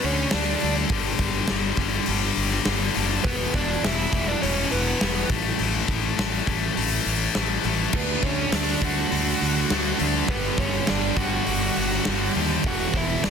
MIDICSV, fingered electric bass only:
0, 0, Header, 1, 2, 480
1, 0, Start_track
1, 0, Tempo, 586510
1, 746, Time_signature, 4, 2, 24, 8
1, 10885, End_track
2, 0, Start_track
2, 0, Title_t, "Fingered electric bass"
2, 0, Program_c, 0, 33
2, 32, Note_on_c, 0, 38, 103
2, 203, Note_off_c, 0, 38, 0
2, 277, Note_on_c, 0, 38, 110
2, 445, Note_off_c, 0, 38, 0
2, 517, Note_on_c, 0, 38, 98
2, 685, Note_off_c, 0, 38, 0
2, 740, Note_on_c, 0, 31, 100
2, 914, Note_off_c, 0, 31, 0
2, 976, Note_on_c, 0, 31, 97
2, 1150, Note_off_c, 0, 31, 0
2, 1226, Note_on_c, 0, 31, 89
2, 1397, Note_off_c, 0, 31, 0
2, 1453, Note_on_c, 0, 31, 91
2, 1628, Note_off_c, 0, 31, 0
2, 1703, Note_on_c, 0, 31, 102
2, 1875, Note_off_c, 0, 31, 0
2, 1939, Note_on_c, 0, 31, 101
2, 2111, Note_off_c, 0, 31, 0
2, 2181, Note_on_c, 0, 31, 102
2, 2352, Note_off_c, 0, 31, 0
2, 2425, Note_on_c, 0, 30, 92
2, 2595, Note_off_c, 0, 30, 0
2, 2657, Note_on_c, 0, 28, 99
2, 2829, Note_off_c, 0, 28, 0
2, 2899, Note_on_c, 0, 28, 96
2, 3070, Note_off_c, 0, 28, 0
2, 3141, Note_on_c, 0, 28, 97
2, 3312, Note_off_c, 0, 28, 0
2, 3379, Note_on_c, 0, 28, 91
2, 3550, Note_off_c, 0, 28, 0
2, 3627, Note_on_c, 0, 28, 99
2, 3795, Note_off_c, 0, 28, 0
2, 3865, Note_on_c, 0, 28, 92
2, 4033, Note_off_c, 0, 28, 0
2, 4106, Note_on_c, 0, 28, 108
2, 4274, Note_off_c, 0, 28, 0
2, 4341, Note_on_c, 0, 33, 103
2, 4511, Note_off_c, 0, 33, 0
2, 4582, Note_on_c, 0, 33, 98
2, 4752, Note_off_c, 0, 33, 0
2, 4819, Note_on_c, 0, 33, 94
2, 4989, Note_off_c, 0, 33, 0
2, 5063, Note_on_c, 0, 33, 102
2, 5232, Note_off_c, 0, 33, 0
2, 5302, Note_on_c, 0, 33, 96
2, 5472, Note_off_c, 0, 33, 0
2, 5542, Note_on_c, 0, 33, 96
2, 5712, Note_off_c, 0, 33, 0
2, 5780, Note_on_c, 0, 33, 99
2, 5950, Note_off_c, 0, 33, 0
2, 6021, Note_on_c, 0, 33, 100
2, 6191, Note_off_c, 0, 33, 0
2, 6257, Note_on_c, 0, 33, 95
2, 6429, Note_off_c, 0, 33, 0
2, 6494, Note_on_c, 0, 38, 101
2, 6667, Note_off_c, 0, 38, 0
2, 6734, Note_on_c, 0, 38, 97
2, 6907, Note_off_c, 0, 38, 0
2, 6977, Note_on_c, 0, 38, 94
2, 7149, Note_off_c, 0, 38, 0
2, 7214, Note_on_c, 0, 38, 100
2, 7388, Note_off_c, 0, 38, 0
2, 7464, Note_on_c, 0, 38, 100
2, 7634, Note_off_c, 0, 38, 0
2, 7708, Note_on_c, 0, 38, 96
2, 7877, Note_off_c, 0, 38, 0
2, 7947, Note_on_c, 0, 38, 97
2, 8116, Note_off_c, 0, 38, 0
2, 8189, Note_on_c, 0, 38, 99
2, 8358, Note_off_c, 0, 38, 0
2, 8419, Note_on_c, 0, 31, 99
2, 8592, Note_off_c, 0, 31, 0
2, 8659, Note_on_c, 0, 31, 103
2, 8833, Note_off_c, 0, 31, 0
2, 8915, Note_on_c, 0, 31, 98
2, 9083, Note_off_c, 0, 31, 0
2, 9138, Note_on_c, 0, 31, 94
2, 9312, Note_off_c, 0, 31, 0
2, 9393, Note_on_c, 0, 31, 95
2, 9562, Note_off_c, 0, 31, 0
2, 9634, Note_on_c, 0, 31, 94
2, 9803, Note_off_c, 0, 31, 0
2, 9881, Note_on_c, 0, 31, 98
2, 10048, Note_off_c, 0, 31, 0
2, 10114, Note_on_c, 0, 39, 97
2, 10284, Note_off_c, 0, 39, 0
2, 10345, Note_on_c, 0, 28, 95
2, 10518, Note_off_c, 0, 28, 0
2, 10587, Note_on_c, 0, 28, 94
2, 10760, Note_off_c, 0, 28, 0
2, 10840, Note_on_c, 0, 28, 93
2, 10885, Note_off_c, 0, 28, 0
2, 10885, End_track
0, 0, End_of_file